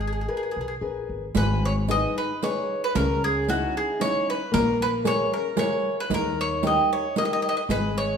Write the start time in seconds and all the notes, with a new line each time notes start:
Already playing: G#1 G#3
0.01 G#4
0.07 G#4
0.13 G#4
0.21 G#4
0.28 G#4 A#4 B4
0.37 G#4
0.43 G#4
0.51 G#4
0.56 B1
0.61 G#4
0.68 G#4
0.81 A#1 G#4 A#4 B4
1.09 G#1
1.35 G#1 G#3 D#4 B4, riq
1.65 E4 C#5
1.88 D#4 G#4 B4 D#5, riq
2.18 D#4 B4
2.42 D#4 G#4 B4 C#5, riq
2.84 D#4 B4
2.95 C#2 C#3 C#4 A#4, riq
3.24 B3 G#4
3.48 C#4 D#4 E4 F#4, riq
3.77 B3 G#4
3.99 C#4 D#4 E4 C#5, riq
4.29 D#4 B4
4.52 A#1 A#3 A#4, riq
4.56 C#4
4.82 B4
5.04 E4 G#4 A#4 C#5, riq
5.34 C#4 A#4
5.56 E4 G#4 A#4 C#5, riq
6.00 D#4 B4
6.10 D#2 D#3 D#4, riq
6.14 A#4
6.39 E4 C#5
6.63 D#4 G4 A#4 D#5, riq
6.93 E4 C#5
7.16 D#4 G4 A#4 D#5, riq
7.25 G4 D#5
7.33 G4 D#5
7.41 G4 D#5
7.48 G4 D#5
7.56 G4 D#5
7.69 G#1 G#3 D#4 B4, riq
7.98 E4 C#5